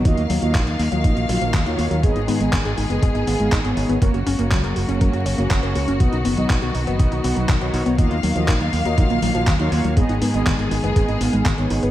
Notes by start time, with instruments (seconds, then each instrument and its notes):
Already playing: string section F#3
0.05 fingered electric bass D#2, string section D#3 A#3 F5, analog polysynth A#3 F4 F#4 D#5, synth arpeggio sound D#4, kick, closed hi-hat
0.17 fingered electric bass D#2, synth arpeggio sound A#3, closed hi-hat
0.30 fingered electric bass D#2, synth arpeggio sound F#3, open hi-hat
0.42 fingered electric bass D#2, synth arpeggio sound F3, analog polysynth A#3 F4 F#4 D#5, closed hi-hat
0.55 fingered electric bass A#1, synth arpeggio sound D#3, kick, clap, closed hi-hat
0.67 fingered electric bass D#2, synth arpeggio sound D#4, closed hi-hat
0.79 fingered electric bass D#2, synth arpeggio sound A#3, open hi-hat
0.92 fingered electric bass D#2, synth arpeggio sound F#3, analog polysynth A#3 F4 F#4 D#5, closed hi-hat
1.04 fingered electric bass A#1, synth arpeggio sound D#4, kick, closed hi-hat
1.17 fingered electric bass A#1, synth arpeggio sound A#3, closed hi-hat
1.29 fingered electric bass A#1, synth arpeggio sound F#3, analog polysynth A#3 F4 F#4 F5, open hi-hat
1.41 fingered electric bass A#1, synth arpeggio sound F3, closed hi-hat
1.54 fingered electric bass D#2, synth arpeggio sound D#3, kick, clap, closed hi-hat
1.66 fingered electric bass D#2, analog polysynth A#3 F4 F#4 C#5, synth arpeggio sound D#4, closed hi-hat
1.78 fingered electric bass D#2, synth arpeggio sound A#3, open hi-hat
1.91 fingered electric bass D#2, synth arpeggio sound F#3, closed hi-hat
2.03 fingered electric bass G#1, string section G#3 B3 G#4, analog polysynth B3 D#4 G#4 D#5, synth arpeggio sound G#4, kick, closed hi-hat
2.16 fingered electric bass G#1, synth arpeggio sound D#4, closed hi-hat
2.28 fingered electric bass G#2, synth arpeggio sound B3, open hi-hat
2.40 fingered electric bass G#1, synth arpeggio sound G#3, analog polysynth B3 D#4 G#4 D#5, closed hi-hat
2.53 fingered electric bass G#1, synth arpeggio sound D#3, kick, clap, closed hi-hat
2.65 fingered electric bass G#1, synth arpeggio sound G#4, closed hi-hat
2.78 fingered electric bass G#1, synth arpeggio sound D#4, open hi-hat
2.90 fingered electric bass F#1, synth arpeggio sound B3, analog polysynth B3 D#4 G#4 D#5, closed hi-hat
3.02 fingered electric bass G#1, synth arpeggio sound G#4, kick, closed hi-hat
3.15 fingered electric bass G#1, synth arpeggio sound D#4, closed hi-hat
3.27 fingered electric bass G#1, analog polysynth B3 D#4 G#4 F5, synth arpeggio sound B3, open hi-hat
3.40 fingered electric bass G#1, synth arpeggio sound G#3, closed hi-hat
3.52 fingered electric bass G#1, synth arpeggio sound D#3, kick, clap, closed hi-hat
3.64 fingered electric bass G#1, analog polysynth B3 D#4 G#4 C#5, synth arpeggio sound G#4, closed hi-hat
3.77 fingered electric bass G#1, synth arpeggio sound D#4, open hi-hat
3.89 fingered electric bass G#1, synth arpeggio sound B3, closed hi-hat
4.02 fingered electric bass F#1, string section C#3 F#3 A#3 F#4, analog polysynth A#3 C#4 F#4 C#5, synth arpeggio sound A#4, kick, closed hi-hat
4.14 fingered electric bass F#1, synth arpeggio sound F#4, closed hi-hat
4.27 fingered electric bass F#1, synth arpeggio sound C#4, open hi-hat
4.39 fingered electric bass F#1, synth arpeggio sound A#3, analog polysynth A#3 C#4 F#4 C#5, closed hi-hat
4.51 fingered electric bass C#2, synth arpeggio sound F#3, kick, clap, closed hi-hat
4.64 fingered electric bass F#1, synth arpeggio sound A#4, closed hi-hat
4.76 fingered electric bass F#1, synth arpeggio sound F#4, open hi-hat
4.88 fingered electric bass F#1, analog polysynth A#3 C#4 F#4 C#5, synth arpeggio sound C#4, closed hi-hat
5.01 fingered electric bass F#2, synth arpeggio sound A#4, kick, closed hi-hat
5.13 fingered electric bass F#2, synth arpeggio sound F#4, closed hi-hat
5.26 fingered electric bass F#1, synth arpeggio sound C#4, open hi-hat
5.38 fingered electric bass F#1, synth arpeggio sound A#3, analog polysynth A#3 C#4 F#4 C#5, closed hi-hat
5.50 fingered electric bass F#1, synth arpeggio sound F#3, kick, clap, closed hi-hat
5.63 fingered electric bass F#1, analog polysynth A#3 C#4 F#4 C#5, synth arpeggio sound A#4, closed hi-hat
5.75 fingered electric bass C#2, synth arpeggio sound F#4, open hi-hat
5.88 fingered electric bass F#1, synth arpeggio sound C#4, closed hi-hat
6.00 fingered electric bass B1, string section D#3 F#3 B3, analog polysynth B3 D#4 F#4 D#5, synth arpeggio sound F#4, kick, closed hi-hat
6.12 fingered electric bass B1, synth arpeggio sound D#4, closed hi-hat
6.25 fingered electric bass F#1, synth arpeggio sound B3, open hi-hat
6.37 fingered electric bass B1, synth arpeggio sound F#3, analog polysynth B3 D#4 F#4 D#5, closed hi-hat
6.50 fingered electric bass B1, synth arpeggio sound D#3, kick, clap, closed hi-hat
6.62 fingered electric bass B1, synth arpeggio sound F#4, closed hi-hat
6.75 fingered electric bass B1, synth arpeggio sound D#4, open hi-hat
6.87 fingered electric bass F#1, analog polysynth B3 D#4 F#4 D#5, synth arpeggio sound B3, closed hi-hat
6.99 fingered electric bass B1, synth arpeggio sound F#4, kick, closed hi-hat
7.12 fingered electric bass B1, synth arpeggio sound D#4, closed hi-hat
7.24 fingered electric bass B1, analog polysynth B3 D#4 F#4 F#5, synth arpeggio sound B3, open hi-hat
7.37 fingered electric bass B1, synth arpeggio sound F#3, closed hi-hat
7.49 fingered electric bass B1, synth arpeggio sound D#3, kick, clap, closed hi-hat
7.61 fingered electric bass B1, analog polysynth B3 D#4 F#4 C#5, synth arpeggio sound F#4, closed hi-hat
7.74 fingered electric bass B1, synth arpeggio sound D#4, open hi-hat
7.86 fingered electric bass B1, synth arpeggio sound B3, closed hi-hat
7.98 fingered electric bass D#2, string section F#3 A#3 F5, analog polysynth A#3 F4 F#4 D#5, synth arpeggio sound D#4, kick, closed hi-hat
8.11 fingered electric bass D#2, synth arpeggio sound A#3, closed hi-hat
8.23 fingered electric bass D#2, synth arpeggio sound F#3, open hi-hat
8.36 fingered electric bass D#2, synth arpeggio sound F3, analog polysynth A#3 F4 F#4 D#5, closed hi-hat
8.48 fingered electric bass A#1, synth arpeggio sound D#3, kick, clap, closed hi-hat
8.61 fingered electric bass D#2, synth arpeggio sound D#4, closed hi-hat
8.73 fingered electric bass D#2, synth arpeggio sound A#3, open hi-hat
8.85 fingered electric bass D#2, synth arpeggio sound F#3, analog polysynth A#3 F4 F#4 D#5, closed hi-hat
8.98 fingered electric bass A#1, synth arpeggio sound D#4, kick, closed hi-hat
9.10 fingered electric bass A#1, synth arpeggio sound A#3, closed hi-hat
9.22 fingered electric bass A#1, synth arpeggio sound F#3, analog polysynth A#3 F4 F#4, open hi-hat
9.35 fingered electric bass A#1, synth arpeggio sound F3, closed hi-hat
9.47 fingered electric bass D#2, synth arpeggio sound D#3, kick, clap, closed hi-hat
9.60 fingered electric bass D#2, analog polysynth A#3 F4 F#4 C#5, synth arpeggio sound D#4, closed hi-hat
9.72 fingered electric bass D#2, synth arpeggio sound A#3, open hi-hat
9.84 fingered electric bass D#2, synth arpeggio sound F#3, closed hi-hat
9.97 fingered electric bass G#1, string section G#3 B3 G#4, analog polysynth B3 D#4 G#4 D#5, synth arpeggio sound G#4, kick, closed hi-hat
10.09 fingered electric bass G#1, synth arpeggio sound D#4, closed hi-hat
10.22 fingered electric bass G#2, synth arpeggio sound B3, open hi-hat
10.34 fingered electric bass G#1, synth arpeggio sound G#3, analog polysynth B3 D#4 G#4 D#5, closed hi-hat
10.46 fingered electric bass G#1, synth arpeggio sound D#3, kick, clap, closed hi-hat
10.59 fingered electric bass G#1, synth arpeggio sound G#4, closed hi-hat
10.71 fingered electric bass G#1, synth arpeggio sound D#4, open hi-hat
10.84 fingered electric bass F#1, synth arpeggio sound B3, analog polysynth B3 D#4 G#4 D#5, closed hi-hat
10.96 fingered electric bass G#1, synth arpeggio sound G#4, kick, closed hi-hat
11.08 fingered electric bass G#1, synth arpeggio sound D#4, closed hi-hat
11.21 fingered electric bass G#1, analog polysynth B3 D#4 G#4 F5, synth arpeggio sound B3, open hi-hat
11.33 fingered electric bass G#1, synth arpeggio sound G#3, closed hi-hat
11.46 fingered electric bass G#1, synth arpeggio sound D#3, kick, clap, closed hi-hat
11.58 fingered electric bass G#1, analog polysynth B3 D#4 G#4 C#5, synth arpeggio sound G#4, closed hi-hat
11.70 fingered electric bass G#1, synth arpeggio sound D#4, open hi-hat
11.83 fingered electric bass G#1, synth arpeggio sound B3, closed hi-hat